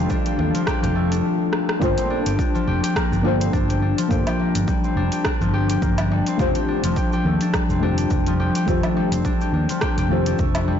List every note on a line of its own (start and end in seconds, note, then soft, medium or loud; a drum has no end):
0.00 1.20 D#3 medium
0.00 1.84 D#3 medium
0.00 0.53 F3 loud
0.00 1.20 G3 medium
0.00 1.80 G3 loud
0.00 0.95 A3 medium
0.00 1.84 A3 medium
0.00 1.97 C4 medium
0.00 1.20 F4 medium
0.00 1.81 F4 medium
0.00 0.26 G4 loud
0.00 1.84 G4 medium
0.00 1.21 A4 medium
0.00 1.83 C5 medium
0.10 0.38 D4 loud
0.10 kick loud
0.10 cabasa medium
0.26 0.66 G4 medium
0.26 closed hi-hat soft
0.26 cabasa soft
0.38 0.51 D#2 medium
0.38 1.11 D4 medium
0.38 muted conga medium
0.38 high conga soft
0.55 1.87 F3 loud
0.55 closed hi-hat medium
0.55 cabasa medium
0.67 0.82 G4 loud
0.67 kick loud
0.67 cross-stick medium
0.67 cabasa medium
0.83 1.20 F1 medium
0.83 2.26 G4 loud
0.83 closed hi-hat soft
0.83 low conga medium
0.83 cabasa soft
0.95 3.02 A3 medium
1.11 2.10 D4 medium
1.11 closed hi-hat medium
1.11 cabasa medium
1.53 cross-stick medium
1.69 cross-stick medium
1.79 1.94 G1 loud
1.79 3.23 G3 loud
1.79 3.20 A#3 loud
1.79 3.21 D4 medium
1.79 3.21 F4 medium
1.79 3.22 A4 medium
1.79 kick loud
1.79 cabasa medium
1.83 3.22 C5 loud
1.97 3.40 C4 medium
1.97 closed hi-hat soft
1.97 cabasa soft
2.10 2.38 D4 loud
2.26 2.36 G1 medium
2.26 2.67 G4 medium
2.26 closed hi-hat medium
2.26 cabasa medium
2.39 3.12 D4 medium
2.39 kick loud
2.39 cabasa medium
2.55 3.97 F3 loud
2.55 cabasa soft
2.67 2.80 F1 medium
2.67 2.83 G4 loud
2.83 3.69 G4 loud
2.83 closed hi-hat medium
2.83 cabasa medium
2.96 4.39 A#3 medium
2.96 kick loud
2.96 cross-stick medium
2.96 cabasa medium
3.12 3.48 G1 medium
3.12 3.52 D4 medium
3.12 cabasa soft
3.22 4.66 G3 loud
3.22 4.06 A#3 medium
3.22 4.07 D4 medium
3.22 4.07 F4 medium
3.22 4.08 A4 medium
3.26 4.08 C5 medium
3.40 4.84 C4 medium
3.40 closed hi-hat medium
3.40 cabasa medium
3.53 3.92 G1 medium
3.53 3.82 D4 loud
3.53 kick loud
3.53 cabasa medium
3.69 4.10 G4 medium
3.69 closed hi-hat soft
3.69 cabasa soft
3.82 4.55 D4 medium
3.98 5.40 F3 loud
3.98 closed hi-hat medium
3.98 cabasa medium
4.08 4.23 G1 medium
4.08 5.49 A#3 medium
4.08 5.49 D4 medium
4.08 5.50 F4 medium
4.08 4.27 G4 loud
4.08 5.50 A4 medium
4.08 5.51 C5 medium
4.08 kick loud
4.08 cabasa medium
4.27 5.12 G4 loud
4.27 closed hi-hat soft
4.27 cabasa soft
4.27 low woodblock medium
4.39 5.82 A#3 medium
4.55 4.65 G1 medium
4.55 4.96 D4 medium
4.55 closed hi-hat medium
4.55 cabasa medium
4.68 6.10 G3 loud
4.68 kick loud
4.68 cabasa medium
4.84 6.27 C4 medium
4.84 cabasa soft
4.96 5.09 F1 medium
4.96 5.25 D4 loud
5.12 5.53 G4 medium
5.12 closed hi-hat medium
5.12 cabasa medium
5.25 5.99 D4 medium
5.25 kick loud
5.25 cross-stick medium
5.25 cabasa medium
5.41 5.77 G1 medium
5.41 6.44 F3 medium
5.41 cabasa soft
5.54 5.70 G4 loud
5.70 6.55 G4 loud
5.70 closed hi-hat medium
5.70 cabasa medium
5.82 6.21 G1 medium
5.82 7.32 A#3 medium
5.82 kick loud
5.82 cabasa medium
5.98 6.39 D4 medium
5.98 closed hi-hat soft
5.98 cabasa soft
5.98 low woodblock medium
6.11 6.44 G3 loud
6.27 7.70 C4 medium
6.27 closed hi-hat medium
6.27 cabasa medium
6.37 6.52 F1 loud
6.37 7.78 D#3 medium
6.37 7.78 A3 medium
6.37 6.68 D4 loud
6.37 7.79 F4 medium
6.37 7.79 G4 medium
6.37 7.80 C5 loud
6.37 kick loud
6.37 cabasa medium
6.55 6.97 G4 medium
6.55 closed hi-hat soft
6.55 cabasa soft
6.68 7.42 D4 medium
6.83 6.93 F1 medium
6.83 8.26 F3 loud
6.83 closed hi-hat medium
6.83 cabasa medium
6.96 7.13 G4 loud
6.96 kick loud
6.96 cabasa medium
7.13 7.98 G4 loud
7.13 cabasa soft
7.25 7.37 D#2 medium
7.25 8.68 A3 medium
7.41 7.82 D4 medium
7.41 closed hi-hat medium
7.41 cabasa medium
7.54 8.95 G3 loud
7.54 kick loud
7.54 cross-stick medium
7.54 cabasa medium
7.69 8.06 F1 loud
7.69 9.12 C4 medium
7.69 cabasa soft
7.80 8.64 D#3 medium
7.80 8.63 A3 medium
7.80 8.11 D4 loud
7.80 8.65 F4 medium
7.80 8.65 G4 medium
7.84 8.66 C5 medium
7.98 8.39 G4 medium
7.98 closed hi-hat medium
7.98 cabasa medium
8.11 8.49 F1 medium
8.11 8.84 D4 medium
8.11 kick loud
8.11 cabasa medium
8.27 9.69 F3 loud
8.27 closed hi-hat soft
8.27 cabasa soft
8.40 8.56 G4 loud
8.55 9.41 G4 loud
8.55 closed hi-hat medium
8.55 cabasa medium
8.66 8.80 F1 loud
8.66 10.07 D#3 medium
8.66 10.06 A3 medium
8.66 10.10 A3 medium
8.66 10.07 F4 medium
8.66 10.08 G4 medium
8.66 10.08 C5 medium
8.66 kick loud
8.66 cabasa medium
8.83 9.25 D4 medium
8.83 closed hi-hat soft
8.83 cabasa soft
8.83 low woodblock medium
8.97 10.67 G3 loud
9.12 9.22 F1 medium
9.12 10.79 C4 medium
9.12 closed hi-hat medium
9.12 cabasa medium
9.25 9.53 D4 loud
9.25 kick loud
9.25 cabasa medium
9.41 9.82 G4 medium
9.41 cabasa soft
9.53 9.65 D#2 medium
9.53 10.27 D4 medium
9.69 10.79 F3 loud
9.69 closed hi-hat medium
9.69 cabasa medium
9.81 9.98 G4 loud
9.81 kick loud
9.81 cross-stick medium
9.81 cabasa medium
9.98 10.34 F1 medium
9.98 10.79 G4 loud
9.98 closed hi-hat soft
9.98 cabasa soft
10.08 10.79 D#3 medium
10.08 10.79 A3 medium
10.08 10.39 A3 medium
10.08 10.79 F4 medium
10.08 10.79 G4 medium
10.08 10.79 C5 medium
10.26 10.55 D4 medium
10.26 closed hi-hat medium
10.26 cabasa medium
10.39 10.78 F1 medium
10.39 10.79 A3 medium
10.39 kick loud
10.39 cabasa medium
10.55 10.79 D4 medium
10.55 closed hi-hat soft
10.55 cabasa soft
10.55 low woodblock medium
10.68 10.79 G3 loud